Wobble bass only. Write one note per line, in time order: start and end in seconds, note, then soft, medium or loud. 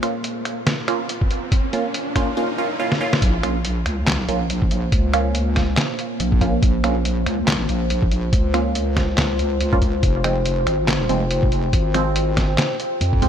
3.22 3.84 A#1 loud
3.86 4.27 C#2 loud
4.28 4.91 A#1 loud
4.92 5.76 C#2 medium
6.20 6.61 A#1 loud
6.62 7.25 A#1 loud
7.26 7.67 C#2 loud
7.69 8.31 A#1 medium
8.33 9.16 C#2 loud
9.18 10.01 C#2 loud
10.03 10.65 F1 loud
10.67 11.08 G#1 medium
11.09 11.72 F1 medium
11.73 12.57 G#1 loud
13.01 13.29 F2 loud